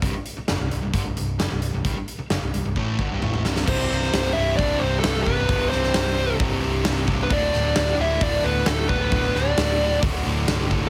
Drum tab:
CC |----------------|----------------|x---------------|----------------|
HH |x-x-x-x-x-x-x-x-|x-x-x-x---------|----o---o---o---|o---o---o---o---|
SD |----o-------o---|----o---------oo|--ooo-------o---|--ooo-------o---|
T2 |----------------|------------oo--|----------------|----------------|
BD |o-------o-------|o-------o-o-----|o-------o-----o-|o-------o-----o-|

CC |----------------|----------------|
HH |o---o---o-------|o---o---o---o---|
SD |--o-o-------o---|--o-o-------o---|
T2 |----------------|----------------|
BD |o-------o-----o-|o-------o-----o-|